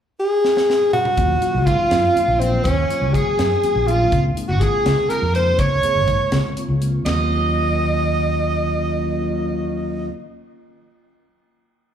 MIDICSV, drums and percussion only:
0, 0, Header, 1, 2, 480
1, 0, Start_track
1, 0, Tempo, 489796
1, 1154, Time_signature, 6, 3, 24, 8
1, 11705, End_track
2, 0, Start_track
2, 0, Title_t, "Drums"
2, 436, Note_on_c, 9, 38, 56
2, 534, Note_off_c, 9, 38, 0
2, 558, Note_on_c, 9, 38, 68
2, 656, Note_off_c, 9, 38, 0
2, 684, Note_on_c, 9, 38, 67
2, 782, Note_off_c, 9, 38, 0
2, 915, Note_on_c, 9, 45, 76
2, 1013, Note_off_c, 9, 45, 0
2, 1031, Note_on_c, 9, 45, 82
2, 1129, Note_off_c, 9, 45, 0
2, 1150, Note_on_c, 9, 42, 71
2, 1153, Note_on_c, 9, 36, 92
2, 1248, Note_off_c, 9, 42, 0
2, 1251, Note_off_c, 9, 36, 0
2, 1390, Note_on_c, 9, 42, 60
2, 1488, Note_off_c, 9, 42, 0
2, 1635, Note_on_c, 9, 36, 67
2, 1639, Note_on_c, 9, 42, 55
2, 1733, Note_off_c, 9, 36, 0
2, 1737, Note_off_c, 9, 42, 0
2, 1873, Note_on_c, 9, 42, 74
2, 1876, Note_on_c, 9, 38, 91
2, 1971, Note_off_c, 9, 42, 0
2, 1974, Note_off_c, 9, 38, 0
2, 2124, Note_on_c, 9, 42, 55
2, 2222, Note_off_c, 9, 42, 0
2, 2367, Note_on_c, 9, 42, 56
2, 2465, Note_off_c, 9, 42, 0
2, 2599, Note_on_c, 9, 36, 91
2, 2603, Note_on_c, 9, 42, 77
2, 2697, Note_off_c, 9, 36, 0
2, 2701, Note_off_c, 9, 42, 0
2, 2846, Note_on_c, 9, 42, 59
2, 2944, Note_off_c, 9, 42, 0
2, 3081, Note_on_c, 9, 36, 63
2, 3089, Note_on_c, 9, 42, 56
2, 3179, Note_off_c, 9, 36, 0
2, 3187, Note_off_c, 9, 42, 0
2, 3321, Note_on_c, 9, 42, 73
2, 3324, Note_on_c, 9, 38, 95
2, 3419, Note_off_c, 9, 42, 0
2, 3422, Note_off_c, 9, 38, 0
2, 3562, Note_on_c, 9, 42, 54
2, 3660, Note_off_c, 9, 42, 0
2, 3805, Note_on_c, 9, 42, 49
2, 3903, Note_off_c, 9, 42, 0
2, 4040, Note_on_c, 9, 36, 97
2, 4044, Note_on_c, 9, 42, 70
2, 4138, Note_off_c, 9, 36, 0
2, 4142, Note_off_c, 9, 42, 0
2, 4284, Note_on_c, 9, 42, 59
2, 4382, Note_off_c, 9, 42, 0
2, 4518, Note_on_c, 9, 36, 68
2, 4520, Note_on_c, 9, 42, 56
2, 4616, Note_off_c, 9, 36, 0
2, 4618, Note_off_c, 9, 42, 0
2, 4761, Note_on_c, 9, 42, 69
2, 4764, Note_on_c, 9, 38, 98
2, 4859, Note_off_c, 9, 42, 0
2, 4862, Note_off_c, 9, 38, 0
2, 4999, Note_on_c, 9, 42, 57
2, 5097, Note_off_c, 9, 42, 0
2, 5241, Note_on_c, 9, 42, 50
2, 5339, Note_off_c, 9, 42, 0
2, 5476, Note_on_c, 9, 42, 77
2, 5477, Note_on_c, 9, 36, 96
2, 5574, Note_off_c, 9, 42, 0
2, 5575, Note_off_c, 9, 36, 0
2, 5716, Note_on_c, 9, 42, 64
2, 5814, Note_off_c, 9, 42, 0
2, 5955, Note_on_c, 9, 42, 55
2, 5956, Note_on_c, 9, 36, 69
2, 6053, Note_off_c, 9, 42, 0
2, 6054, Note_off_c, 9, 36, 0
2, 6193, Note_on_c, 9, 42, 73
2, 6196, Note_on_c, 9, 38, 97
2, 6291, Note_off_c, 9, 42, 0
2, 6294, Note_off_c, 9, 38, 0
2, 6438, Note_on_c, 9, 42, 57
2, 6536, Note_off_c, 9, 42, 0
2, 6681, Note_on_c, 9, 42, 53
2, 6779, Note_off_c, 9, 42, 0
2, 6919, Note_on_c, 9, 53, 72
2, 6921, Note_on_c, 9, 38, 89
2, 7017, Note_off_c, 9, 53, 0
2, 7019, Note_off_c, 9, 38, 0
2, 11705, End_track
0, 0, End_of_file